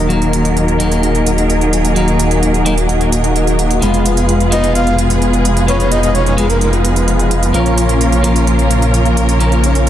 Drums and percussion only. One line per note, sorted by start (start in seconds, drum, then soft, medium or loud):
0.10 closed hi-hat soft
0.22 closed hi-hat soft
0.33 closed hi-hat medium
0.45 closed hi-hat soft
0.57 closed hi-hat soft
0.68 closed hi-hat soft
0.80 closed hi-hat medium
0.92 closed hi-hat soft
1.03 closed hi-hat soft
1.15 closed hi-hat soft
1.26 closed hi-hat medium
1.38 closed hi-hat soft
1.50 closed hi-hat soft
1.61 closed hi-hat soft
1.73 closed hi-hat medium
1.85 closed hi-hat soft
1.96 closed hi-hat soft
2.08 closed hi-hat soft
2.19 closed hi-hat medium
2.31 closed hi-hat soft
2.43 closed hi-hat soft
2.54 closed hi-hat soft
2.66 closed hi-hat medium
2.78 closed hi-hat soft
2.89 closed hi-hat soft
3.01 closed hi-hat soft
3.12 closed hi-hat medium
3.24 closed hi-hat soft
3.36 closed hi-hat soft
3.47 closed hi-hat soft
3.59 closed hi-hat medium
3.71 closed hi-hat soft
3.82 closed hi-hat soft
3.94 closed hi-hat soft
4.06 closed hi-hat medium
4.17 closed hi-hat soft
4.29 closed hi-hat soft
4.40 closed hi-hat soft
4.52 closed hi-hat medium
4.64 closed hi-hat soft
4.75 closed hi-hat soft
4.87 closed hi-hat soft
4.99 closed hi-hat medium
5.10 closed hi-hat soft
5.22 closed hi-hat soft
5.33 closed hi-hat soft
5.45 closed hi-hat medium
5.57 closed hi-hat soft
5.68 closed hi-hat soft
5.80 closed hi-hat soft
5.92 closed hi-hat medium
6.03 closed hi-hat soft
6.15 closed hi-hat soft
6.26 closed hi-hat soft
6.38 closed hi-hat medium
6.50 closed hi-hat soft
6.61 closed hi-hat medium
6.73 closed hi-hat soft
6.85 closed hi-hat medium
6.96 closed hi-hat medium
7.08 closed hi-hat soft
7.19 closed hi-hat soft
7.31 closed hi-hat medium
7.43 closed hi-hat soft
7.54 closed hi-hat medium
7.66 closed hi-hat soft
7.78 closed hi-hat medium
7.89 closed hi-hat medium
8.01 closed hi-hat medium
8.12 closed hi-hat soft
8.24 closed hi-hat medium
8.36 closed hi-hat medium
8.47 closed hi-hat medium
8.59 closed hi-hat soft
8.71 closed hi-hat medium
8.82 closed hi-hat medium
8.94 closed hi-hat medium
9.06 closed hi-hat soft
9.17 closed hi-hat medium
9.29 closed hi-hat medium
9.40 closed hi-hat medium
9.52 closed hi-hat soft
9.64 closed hi-hat loud
9.75 closed hi-hat medium